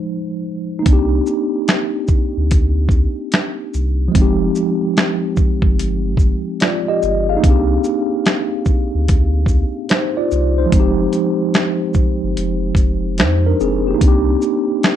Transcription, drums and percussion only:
0.86 kick loud
0.86 closed hi-hat medium
1.26 shaker soft
1.68 finger snap medium
1.68 snare loud
1.68 closed hi-hat medium
2.08 kick medium
2.08 shaker soft
2.51 kick medium
2.51 closed hi-hat medium
2.89 kick medium
2.89 shaker soft
3.32 finger snap medium
3.32 snare loud
3.32 closed hi-hat medium
3.74 shaker soft
4.15 kick loud
4.15 closed hi-hat medium
4.55 shaker medium
4.97 finger snap medium
4.97 snare loud
4.97 closed hi-hat medium
5.36 kick medium
5.36 shaker soft
5.62 kick medium
5.79 closed hi-hat medium
6.17 kick medium
6.17 shaker soft
6.60 finger snap medium
6.60 snare loud
6.60 closed hi-hat medium
7.02 shaker soft
7.44 kick loud
7.44 closed hi-hat medium
7.84 shaker medium
8.26 finger snap medium
8.26 snare loud
8.26 closed hi-hat medium
8.65 kick medium
8.65 shaker soft
9.08 kick loud
9.08 closed hi-hat medium
9.46 kick medium
9.46 shaker soft
9.89 finger snap medium
9.89 snare loud
9.89 closed hi-hat medium
10.31 shaker soft
10.72 kick loud
10.72 closed hi-hat medium
11.13 closed hi-hat soft
11.13 shaker medium
11.54 finger snap medium
11.54 snare loud
11.54 closed hi-hat medium
11.94 kick medium
11.94 shaker soft
12.37 closed hi-hat medium
12.75 kick medium
12.75 closed hi-hat soft
12.75 shaker soft
13.18 finger snap medium
13.18 snare loud
13.18 closed hi-hat medium
13.60 shaker soft
14.01 kick loud
14.01 closed hi-hat medium
14.42 shaker medium
14.83 finger snap medium
14.83 snare loud
14.83 closed hi-hat medium

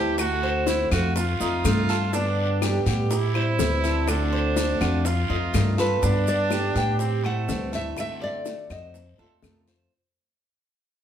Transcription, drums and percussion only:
0.18 high bongo medium
0.18 long guiro medium
0.18 claves medium
0.18 maracas medium
0.67 high bongo medium
0.67 short guiro medium
0.67 maracas medium
0.91 high bongo soft
0.91 short guiro medium
0.91 claves medium
0.91 maracas soft
1.16 high bongo medium
1.16 long guiro medium
1.16 maracas medium
1.40 high bongo soft
1.40 maracas medium
1.65 high bongo soft
1.65 low bongo medium
1.65 short guiro medium
1.65 claves medium
1.65 maracas medium
1.89 high bongo soft
1.89 short guiro medium
1.89 maracas soft
2.13 high bongo medium
2.13 long guiro medium
2.13 maracas medium
2.62 high bongo medium
2.62 short guiro medium
2.62 claves medium
2.62 maracas medium
2.86 high bongo soft
2.86 short guiro medium
2.86 maracas soft
3.11 high bongo medium
3.11 long guiro medium
3.11 maracas medium
3.35 high bongo soft
3.35 claves medium
3.59 high bongo soft
3.59 low bongo medium
3.59 short guiro medium
3.59 maracas medium
3.84 high bongo soft
3.84 short guiro medium
3.84 maracas soft
4.08 high bongo medium
4.08 long guiro medium
4.08 claves medium
4.08 maracas medium
4.56 high bongo medium
4.56 short guiro medium
4.56 maracas medium
4.81 high bongo soft
4.81 short guiro medium
4.81 claves medium
4.81 maracas soft
5.05 high bongo medium
5.05 long guiro medium
5.05 maracas medium
5.29 high bongo soft
5.54 high bongo soft
5.54 low bongo medium
5.54 short guiro medium
5.54 claves medium
5.54 maracas medium
5.78 high bongo soft
5.78 short guiro medium
5.78 maracas soft
6.02 high bongo medium
6.02 long guiro medium
6.02 maracas medium
6.27 maracas medium
6.51 high bongo medium
6.51 short guiro medium
6.51 claves medium
6.51 maracas medium
6.75 high bongo soft
6.75 short guiro medium
6.75 maracas soft
6.99 high bongo medium
6.99 long guiro medium
6.99 maracas medium
7.24 high bongo soft
7.24 claves medium
7.49 high bongo soft
7.49 low bongo medium
7.49 short guiro medium
7.49 maracas medium
7.73 high bongo soft
7.73 short guiro medium
7.73 maracas soft
7.97 high bongo medium
7.97 long guiro medium
7.97 claves medium
7.97 maracas medium
8.46 high bongo medium
8.46 short guiro medium
8.46 maracas medium
8.70 high bongo soft
8.70 short guiro medium
8.70 claves medium
8.70 maracas soft
8.94 high bongo medium
8.94 long guiro medium
8.94 maracas medium
9.18 high bongo soft
9.42 high bongo soft
9.42 low bongo medium
9.42 short guiro medium
9.42 claves medium
9.42 maracas medium
9.67 high bongo soft
9.67 short guiro medium
9.67 maracas soft

